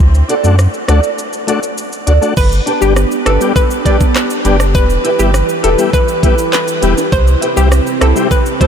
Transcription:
0.00 sub bass D2, kick, shaker
0.15 shaker
0.28 tonewheel organ D4 F#4, nylon-string guitar F#4 A4 D5, closed hi-hat, shaker
0.43 sub bass F#2, tonewheel organ A3 D4 F#4, shaker
0.59 cross-stick, shaker
0.74 shaker
0.88 sub bass D2, tonewheel organ A3 D4 F#4, nylon-string guitar F#4 A4 D5, cross-stick, closed hi-hat, shaker
1.03 shaker
1.18 shaker
1.33 shaker
1.47 tonewheel organ A3 D4 F#4, nylon-string guitar F#4 A4 D5, closed hi-hat, shaker
1.63 muted nylon-string guitar stroke, shaker
1.78 shaker
1.92 shaker
2.07 sub bass D2, tonewheel organ D4 F#4, nylon-string guitar F#4 A4 D5, closed hi-hat, shaker
2.21 tonewheel organ A3 D4 F#4, shaker
2.37 sub bass G1, analog synth pad B3 D4 G4, synth pluck B4, kick, crash, shaker
2.52 shaker
2.66 tonewheel organ D4 G4, nylon-string guitar D4 G4 B4, closed hi-hat, shaker
2.81 sub bass G1, tonewheel organ G3 B3 D4 G4, synth pluck G4, shaker
2.96 cross-stick, shaker
3.11 shaker
3.26 sub bass G1, tonewheel organ D4 E4, nylon-string guitar D4 G4 B4, synth pluck A4, cross-stick, closed hi-hat, shaker
3.40 tonewheel organ G3 B3 D4 G4, shaker
3.56 synth pluck B4, kick, shaker
3.71 muted nylon-string guitar stroke, shaker
3.85 tonewheel organ G3 B3 D4 G4, nylon-string guitar D4 G4 B4, synth pluck D5, kick, closed hi-hat, shaker
4.00 kick, shaker
4.15 cross-stick, clap, shaker
4.30 shaker
4.44 sub bass F#1, tonewheel organ G3 B3 D4 G4, nylon-string guitar D4 G4 B4, closed hi-hat, shaker
4.60 muted nylon-string guitar stroke, cross-stick, shaker
4.75 sub bass E1, analog synth pad E3 E4 B4, synth pluck B4, kick, shaker
4.90 shaker
5.04 tonewheel organ E4 G4, nylon-string guitar E4 G4 B4, closed hi-hat, shaker
5.19 sub bass G1, tonewheel organ G3 B3 E4 G4, synth pluck G4, shaker
5.34 cross-stick, shaker
5.49 shaker
5.63 sub bass E1, tonewheel organ E4 G4, nylon-string guitar E4 G4 B4, synth pluck A4, closed hi-hat, shaker
5.78 tonewheel organ G3 B3 E4 G4, shaker
5.93 synth pluck B4, kick, shaker
6.08 muted nylon-string guitar stroke, shaker
6.23 tonewheel organ G3 B3 E4 G4, nylon-string guitar E4 G4 B4, kick, closed hi-hat, shaker
6.38 shaker
6.53 synth pluck B4, clap, shaker
6.68 shaker
6.82 sub bass E1, tonewheel organ G3 B3 E4 G4, nylon-string guitar E4 G4 B4, closed hi-hat, shaker
6.97 muted nylon-string guitar stroke, high timbale, shaker
7.12 sub bass C2, analog synth pad C3 C4 G4, synth pluck C5, kick, shaker
7.27 shaker
7.41 tonewheel organ E4 G4, nylon-string guitar E4 G4 C5, closed hi-hat, shaker
7.56 sub bass C2, tonewheel organ G3 C4 E4 G4, synth pluck G4, shaker
7.72 cross-stick, shaker
7.87 shaker
8.01 sub bass C2, tonewheel organ E4 G4, nylon-string guitar E4 G4 C5, synth pluck A4, cross-stick, closed hi-hat, shaker
8.16 tonewheel organ G3 C4 E4 G4, shaker
8.31 synth pluck B4, kick, shaker
8.46 muted nylon-string guitar stroke, shaker
8.60 tonewheel organ G3 C4 E4 A4, nylon-string guitar E4 G4 C5, synth pluck C5, kick, closed hi-hat, shaker

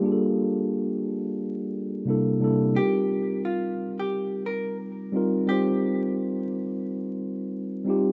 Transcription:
Already playing: tine electric piano A#3 D4 F4 G4
0.00 tine electric piano G3 A#3 D4
0.04 tine electric piano F4 G#4
0.12 tine electric piano A4
2.05 tine electric piano C3 G3 A#3 D4
2.09 tine electric piano E4 A4
2.40 tine electric piano C3 G3 A#3 D4 E4
2.44 tine electric piano A4
2.74 tine electric piano G3 C4 D#4 F4, hollow-body jazz guitar G4
2.79 tine electric piano A#4
3.45 hollow-body jazz guitar F4
3.99 hollow-body jazz guitar G4
4.46 hollow-body jazz guitar A#4
5.12 tine electric piano G3 C4 D#4 F4
5.17 tine electric piano A#4
5.46 tine electric piano G3 C4 D#4 F4, hollow-body jazz guitar G4
5.51 tine electric piano C5
7.85 tine electric piano G3 C4 D#4 F4
7.90 tine electric piano G4

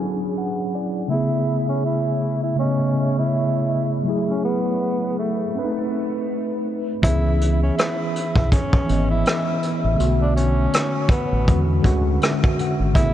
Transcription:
Already playing: tine electric piano F#3 C#4 D4 E4 G#4
0.00 tine electric piano G#5
0.38 tine electric piano F#5
0.75 tine electric piano D5
1.08 tine electric piano C#3 A3 B3, tenor saxophone E4
1.14 tine electric piano G#4
1.69 tenor saxophone C#4
1.86 tenor saxophone E4
2.43 tenor saxophone E4
2.55 tine electric piano C#3 A3 B3, tenor saxophone C#4
2.61 tine electric piano D#5
3.19 tenor saxophone E4
4.03 tine electric piano F#3 A3
4.07 tine electric piano E4 G#4
4.30 tenor saxophone C#4
4.45 tenor saxophone B3
5.19 tenor saxophone A3
5.53 tine electric piano A3 C4
5.57 tine electric piano D4 B4
5.63 tine electric piano D#4
7.02 fingered electric bass C#2, tine electric piano E3 B3 C#4, tenor saxophone E4, kick, closed hi-hat
7.08 tine electric piano G#4
7.41 closed hi-hat
7.63 tenor saxophone C#4
7.78 tenor saxophone E4, cross-stick, closed hi-hat
8.16 closed hi-hat
8.35 fingered electric bass B1, tenor saxophone E4, kick
8.52 tenor saxophone C#4, kick, closed hi-hat
8.73 kick
8.86 fingered electric bass G#1, tine electric piano E3 B3, closed hi-hat
8.90 tine electric piano C#4 D#5
9.11 tenor saxophone E4
9.26 cross-stick, closed hi-hat
9.63 closed hi-hat
9.85 fingered electric bass A1
9.94 tine electric piano D3 A3
9.98 fingered electric bass B1, tine electric piano B3 F#4, closed hi-hat
10.21 tenor saxophone D4
10.36 tenor saxophone C#4, closed hi-hat
10.73 cross-stick, closed hi-hat
11.09 tenor saxophone B3, kick, closed hi-hat
11.33 fingered electric bass A1
11.46 fingered electric bass E2, tine electric piano D3 G#3, kick, closed hi-hat
11.50 tine electric piano C#4 F#4
11.80 tine electric piano D3 G#3 C#4, kick
11.85 fingered electric bass D2, tine electric piano F#4, closed hi-hat
12.21 tine electric piano E5, cross-stick, closed hi-hat
12.44 kick
12.59 tine electric piano F#5, closed hi-hat
12.80 fingered electric bass G#1
12.93 fingered electric bass A1, tine electric piano C#3 A3 B3, tenor saxophone E4, kick, closed hi-hat
12.99 tine electric piano G#4

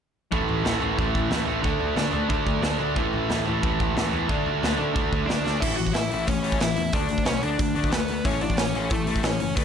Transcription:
0.31 picked electric bass A1, distorted electric guitar A2 E3 A3, kick, floor tom
0.49 picked electric bass A1, floor tom
0.65 picked electric bass A1, distorted electric guitar A2 E3 A3, snare, floor tom
0.81 picked electric bass A1, distorted electric guitar A2 E3 A3, floor tom
0.98 picked electric bass A1, distorted electric guitar A2 E3 A3, kick, floor tom
1.15 picked electric bass A1, kick, floor tom
1.31 picked electric bass A1, distorted electric guitar A2 E3 A3, snare, floor tom
1.47 picked electric bass A1, distorted electric guitar A2 E3 A3, floor tom
1.64 picked electric bass D2, distorted electric guitar D3 A3 D4, kick, floor tom
1.79 picked electric bass D2, floor tom
1.96 picked electric bass D2, distorted electric guitar D3 A3 D4, snare, floor tom
2.11 picked electric bass D2, overdriven electric guitar D4, floor tom
2.15 distorted electric guitar D3 A3 D4
2.30 picked electric bass D2, distorted electric guitar D3 A3 D4, kick, floor tom
2.46 picked electric bass D2, kick, floor tom
2.62 picked electric bass D2, distorted electric guitar D3 A3 D4, snare, floor tom
2.80 picked electric bass D2, distorted electric guitar D3 A3 D4, floor tom
2.96 picked electric bass A1, distorted electric guitar A2 E3 A3, kick, floor tom
3.13 picked electric bass A1, floor tom
3.30 picked electric bass A1, distorted electric guitar A2 E3 A3, snare, floor tom
3.47 picked electric bass A1, distorted electric guitar A2 E3 A3, floor tom
3.63 picked electric bass A1, distorted electric guitar A2 E3 A3, kick, floor tom
3.80 picked electric bass A1, kick, floor tom
3.97 picked electric bass A1, distorted electric guitar A2 E3 A3, snare, floor tom
4.13 picked electric bass E2, distorted electric guitar A2 E3 A3, floor tom
4.29 picked electric bass D2, distorted electric guitar D3 A3 D4, kick, floor tom
4.46 picked electric bass D2, floor tom
4.63 picked electric bass D2, distorted electric guitar D3 A3 D4, snare, floor tom
4.78 picked electric bass D2, distorted electric guitar D3 A3 D4, floor tom
4.95 picked electric bass D2, distorted electric guitar D3 A3 D4, kick, floor tom
5.12 picked electric bass D2, kick, floor tom
5.26 picked electric bass D2, distorted electric guitar D3 A3 D4, lead electric guitar D4 D5, snare, floor tom
5.45 picked electric bass D2, distorted electric guitar D3 A3 D4, snare
5.60 picked electric bass A1, distorted electric guitar A2 E3 A3, lead electric guitar E4 E5, kick, crash
5.75 distorted electric guitar A2 E3, lead electric guitar F#4 F#5, open hi-hat
5.80 picked electric bass A1
5.87 kick
5.93 picked electric bass A1, distorted electric guitar A2 E3, lead electric guitar E4 E5, snare, open hi-hat
6.10 picked electric bass A1, distorted electric guitar A2 E3 A3, open hi-hat
6.26 picked electric bass A1, distorted electric guitar A2 E3, lead electric guitar C#4 C#5, kick, open hi-hat
6.42 distorted electric guitar A2 E3 A3, open hi-hat
6.52 kick
6.59 picked electric bass A1, distorted electric guitar A2 E3, lead electric guitar E4 E5, snare, open hi-hat
6.76 picked electric bass E2, distorted electric guitar A2 E3, open hi-hat
6.93 picked electric bass D2, distorted electric guitar D3 A3 D4, lead electric guitar D4 D5, kick, open hi-hat
7.09 picked electric bass D2, distorted electric guitar D3 A3, open hi-hat
7.18 kick
7.25 picked electric bass B1, distorted electric guitar D3 A3, lead electric guitar C#4 C#5, snare, open hi-hat
7.41 picked electric bass D2, distorted electric guitar D3 A3 D4, lead electric guitar D4 D5, open hi-hat
7.58 picked electric bass D2, distorted electric guitar D3 A3, kick, open hi-hat
7.75 picked electric bass D2, distorted electric guitar D3 A3 D4, open hi-hat
7.84 kick
7.90 picked electric bass D2, distorted electric guitar D3 A3, lead electric guitar B3 B4, snare, open hi-hat
8.08 distorted electric guitar D3 A3, open hi-hat
8.24 picked electric bass A1, distorted electric guitar A2 E3 A3, lead electric guitar C#4 C#5, kick, open hi-hat
8.41 picked electric bass A1, distorted electric guitar A2 E3, lead electric guitar D4 D5, open hi-hat
8.50 kick
8.56 picked electric bass A1, distorted electric guitar A2 E3, lead electric guitar C#4 C#5, snare, open hi-hat
8.75 picked electric bass A1, distorted electric guitar A2 E3 A3, open hi-hat
8.90 picked electric bass A1, distorted electric guitar A2 E3, lead electric guitar A3 A4, kick, open hi-hat
9.07 distorted electric guitar A2 E3 A3, open hi-hat
9.16 kick
9.23 picked electric bass A1, distorted electric guitar A2 E3, lead electric guitar C#4 C#5, snare, open hi-hat
9.40 picked electric bass F#1, distorted electric guitar A2 E3, open hi-hat
9.55 picked electric bass D2, distorted electric guitar D3 A3 D4, lead electric guitar B3 B4, kick, open hi-hat

